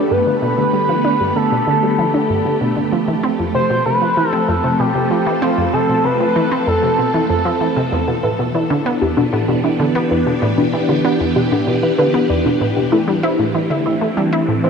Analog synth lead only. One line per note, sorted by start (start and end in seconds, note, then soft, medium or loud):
0.00 0.12 G4 medium
0.11 0.41 B4 medium
0.42 1.37 B4 loud
1.36 2.61 A4 medium
3.55 3.84 C5 loud
3.86 4.31 B4 loud
4.31 4.48 A4 loud
4.48 4.81 A4 loud
4.80 5.44 G4 medium
5.42 5.73 F4 medium
5.73 6.06 A4 medium
6.04 6.66 B4 loud
6.67 7.25 A4 loud
7.29 7.73 A4 medium